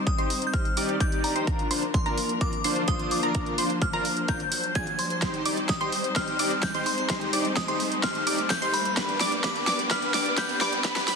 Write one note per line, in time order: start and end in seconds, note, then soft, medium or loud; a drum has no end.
0.00 1.43 G3 medium
0.00 1.44 C4 medium
0.00 1.43 D#4 medium
0.00 1.44 C5 medium
0.00 riser medium
0.07 0.48 D#6 medium
0.07 kick loud
0.07 closed hi-hat medium
0.18 0.30 D#4 loud
0.18 0.30 G4 medium
0.18 0.30 C5 loud
0.18 0.30 C6 loud
0.18 closed hi-hat soft
0.30 open hi-hat loud
0.42 closed hi-hat soft
0.47 0.54 G6 medium
0.53 0.65 D#4 medium
0.53 0.65 G4 medium
0.53 0.65 C5 medium
0.53 0.65 C6 medium
0.53 0.97 F6 loud
0.53 kick loud
0.53 closed hi-hat medium
0.65 closed hi-hat soft
0.77 0.96 D#4 medium
0.77 0.96 G4 medium
0.77 0.96 D5 medium
0.77 0.96 D6 medium
0.77 open hi-hat loud
0.89 closed hi-hat soft
1.00 1.33 D6 loud
1.00 1.11 G6 loud
1.00 kick loud
1.00 closed hi-hat medium
1.12 closed hi-hat soft
1.24 1.68 A#5 medium
1.24 open hi-hat medium
1.35 1.44 D#4 medium
1.35 1.44 G4 medium
1.35 1.44 C5 medium
1.35 1.44 C6 medium
1.35 closed hi-hat soft
1.47 5.19 F3 medium
1.47 5.18 A#3 medium
1.47 5.19 D4 medium
1.47 3.33 A#4 medium
1.47 1.68 A#5 medium
1.47 kick loud
1.47 closed hi-hat medium
1.59 closed hi-hat soft
1.71 1.83 D4 medium
1.71 1.83 F4 medium
1.71 1.83 C5 medium
1.71 1.83 C6 medium
1.71 open hi-hat loud
1.83 closed hi-hat soft
1.94 2.42 C6 medium
1.94 kick loud
1.94 closed hi-hat medium
2.06 2.18 D4 loud
2.06 2.18 F4 medium
2.06 2.18 A#4 loud
2.06 2.18 A#5 loud
2.06 closed hi-hat soft
2.18 open hi-hat loud
2.29 closed hi-hat soft
2.41 2.53 D4 medium
2.41 2.53 F4 medium
2.41 2.53 A#4 medium
2.41 2.53 A#5 medium
2.41 2.89 D6 loud
2.41 kick loud
2.41 closed hi-hat medium
2.53 closed hi-hat soft
2.64 2.83 D4 medium
2.64 2.83 F4 medium
2.64 2.83 C5 medium
2.64 2.83 C6 medium
2.64 open hi-hat loud
2.76 closed hi-hat soft
2.88 3.20 D4 medium
2.88 3.20 F4 medium
2.88 3.20 C5 loud
2.88 3.20 C6 loud
2.88 3.12 D#6 loud
2.88 kick loud
2.88 closed hi-hat medium
2.99 closed hi-hat soft
3.11 3.55 D6 medium
3.11 open hi-hat loud
3.23 3.32 D4 medium
3.23 3.32 F4 medium
3.23 3.32 A#4 medium
3.23 3.32 A#5 medium
3.23 closed hi-hat soft
3.35 3.55 A#4 medium
3.35 8.93 C5 medium
3.35 3.55 A#5 medium
3.35 kick loud
3.35 closed hi-hat medium
3.46 closed hi-hat soft
3.58 3.70 D4 medium
3.58 3.70 F4 medium
3.58 3.70 C5 medium
3.58 3.70 C6 medium
3.58 open hi-hat loud
3.70 closed hi-hat soft
3.82 4.30 F6 medium
3.82 kick loud
3.82 closed hi-hat medium
3.93 4.05 D4 loud
3.93 4.05 F4 medium
3.93 4.05 A#4 loud
3.93 4.05 A#5 loud
3.93 closed hi-hat soft
4.05 open hi-hat medium
4.17 closed hi-hat soft
4.28 4.40 D4 medium
4.28 4.40 F4 medium
4.28 4.40 A#4 medium
4.28 4.40 A#5 medium
4.28 4.72 G6 loud
4.28 kick loud
4.28 closed hi-hat medium
4.40 closed hi-hat soft
4.52 open hi-hat loud
4.64 closed hi-hat soft
4.75 4.87 D4 medium
4.75 4.87 F4 medium
4.75 4.87 G#4 medium
4.75 4.87 G#5 medium
4.75 4.97 G#6 loud
4.75 kick loud
4.75 closed hi-hat medium
4.87 closed hi-hat soft
4.99 5.43 C6 medium
4.99 open hi-hat medium
5.10 closed hi-hat soft
5.22 11.15 G3 medium
5.22 8.93 C4 medium
5.22 8.93 D#4 medium
5.22 5.43 D#4 medium
5.22 5.43 G4 medium
5.22 5.43 C5 medium
5.22 5.43 C6 medium
5.22 kick loud
5.22 snare soft
5.22 closed hi-hat medium
5.34 closed hi-hat soft
5.46 5.57 D#4 medium
5.46 5.58 G4 medium
5.46 5.58 D5 medium
5.46 5.57 D6 medium
5.46 open hi-hat loud
5.57 closed hi-hat soft
5.69 6.13 D#6 medium
5.69 kick loud
5.69 snare soft
5.69 closed hi-hat medium
5.81 5.93 D#4 medium
5.81 5.93 G4 medium
5.81 5.93 C5 loud
5.81 5.93 C6 loud
5.81 closed hi-hat soft
5.92 open hi-hat medium
6.04 closed hi-hat soft
6.16 6.37 D#4 medium
6.16 6.37 G4 medium
6.16 6.37 C5 medium
6.16 6.37 C6 medium
6.16 6.64 F6 loud
6.16 kick loud
6.16 snare soft
6.16 closed hi-hat medium
6.28 closed hi-hat soft
6.39 6.51 D#4 medium
6.39 6.51 G4 medium
6.39 6.51 D5 medium
6.39 6.51 D6 medium
6.39 open hi-hat loud
6.51 closed hi-hat soft
6.63 6.87 G6 loud
6.63 kick loud
6.63 snare medium
6.63 closed hi-hat medium
6.74 6.86 D#4 medium
6.74 6.86 G4 medium
6.74 6.86 C5 loud
6.74 6.86 C6 loud
6.74 closed hi-hat soft
6.86 7.30 C6 medium
6.86 open hi-hat medium
6.98 closed hi-hat soft
7.10 7.30 D#4 medium
7.10 7.30 G4 medium
7.10 7.30 C5 medium
7.10 7.30 C6 medium
7.10 kick loud
7.10 snare medium
7.10 closed hi-hat medium
7.21 closed hi-hat soft
7.33 7.45 D#4 medium
7.33 7.45 G4 medium
7.33 7.45 D5 medium
7.33 7.45 D6 medium
7.33 open hi-hat loud
7.45 closed hi-hat soft
7.56 8.05 D#6 medium
7.56 kick loud
7.56 snare medium
7.56 closed hi-hat medium
7.68 7.80 D#4 medium
7.68 7.80 G4 medium
7.68 7.80 C5 loud
7.68 7.80 C6 loud
7.68 closed hi-hat soft
7.80 open hi-hat medium
7.92 closed hi-hat soft
8.03 8.24 D#4 medium
8.03 8.24 G4 medium
8.03 8.24 C5 medium
8.03 8.24 C6 medium
8.03 8.47 F6 loud
8.03 kick loud
8.03 snare medium
8.03 closed hi-hat medium
8.15 closed hi-hat soft
8.27 8.39 D#4 medium
8.27 8.39 G4 medium
8.27 8.39 D5 medium
8.27 8.39 D6 medium
8.27 open hi-hat loud
8.38 closed hi-hat soft
8.50 8.74 G6 loud
8.50 kick loud
8.50 snare medium
8.50 closed hi-hat medium
8.62 8.74 D#4 medium
8.62 8.74 G4 medium
8.62 8.74 C5 loud
8.62 8.74 C6 loud
8.62 closed hi-hat soft
8.73 9.17 B5 medium
8.73 open hi-hat medium
8.85 closed hi-hat soft
8.97 11.15 B3 medium
8.97 9.18 D4 medium
8.97 11.15 D4 medium
8.97 9.18 G4 medium
8.97 9.18 B4 medium
8.97 11.15 B4 medium
8.97 9.18 B5 medium
8.97 kick loud
8.97 snare medium
8.97 closed hi-hat loud
9.09 closed hi-hat soft
9.20 9.32 D4 medium
9.20 9.32 G4 medium
9.20 9.32 D5 medium
9.20 9.32 D6 medium
9.20 snare medium
9.20 open hi-hat loud
9.32 closed hi-hat soft
9.44 9.65 D4 medium
9.44 9.65 G4 medium
9.44 9.65 B4 medium
9.44 9.65 B5 medium
9.44 9.92 D6 medium
9.44 kick loud
9.44 snare medium
9.44 closed hi-hat medium
9.56 closed hi-hat soft
9.67 9.79 D4 medium
9.67 9.79 G4 medium
9.67 9.79 D5 medium
9.67 9.79 D6 loud
9.67 snare medium
9.67 open hi-hat medium
9.79 closed hi-hat soft
9.91 10.12 D4 medium
9.91 10.12 G4 medium
9.91 10.12 B4 medium
9.91 10.12 B5 medium
9.91 10.39 F6 loud
9.91 kick loud
9.91 snare medium
9.91 closed hi-hat medium
10.02 closed hi-hat soft
10.14 10.26 D4 medium
10.14 10.26 G4 medium
10.14 10.26 D5 medium
10.14 10.26 D6 medium
10.14 snare medium
10.14 open hi-hat loud
10.26 closed hi-hat soft
10.38 10.58 D4 medium
10.38 10.58 G4 medium
10.38 10.58 B4 medium
10.38 10.58 B5 medium
10.38 10.48 G6 loud
10.38 kick loud
10.38 snare medium
10.38 closed hi-hat loud
10.49 closed hi-hat soft
10.61 10.73 D4 medium
10.61 10.73 G4 medium
10.61 10.73 D5 medium
10.61 11.05 B5 medium
10.61 10.73 D6 medium
10.61 snare medium
10.61 open hi-hat medium
10.73 closed hi-hat soft
10.84 11.05 D4 medium
10.84 11.05 G4 medium
10.84 11.05 B4 medium
10.84 11.05 B5 medium
10.84 kick loud
10.84 snare medium
10.84 closed hi-hat loud
10.96 snare medium
10.96 closed hi-hat soft
11.08 11.15 D4 medium
11.08 11.15 G4 medium
11.08 11.15 B4 medium
11.08 11.15 B5 medium
11.08 snare medium
11.08 open hi-hat loud